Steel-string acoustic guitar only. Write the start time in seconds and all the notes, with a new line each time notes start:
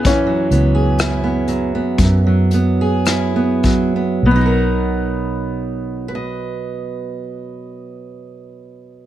Already playing: B4
0.03 F#2
0.27 F#3
0.52 B3
0.75 G#4
1.00 E4
1.24 B3
1.48 F#3
1.75 B3
2.01 F#2
2.27 F#3
2.54 B3
2.81 G#4
3.09 E4
3.36 B3
3.65 F#3
3.96 B3
4.25 B2
4.31 F#3
4.36 D#4
4.41 F#4
4.46 A#4
6.08 B4
6.15 D#5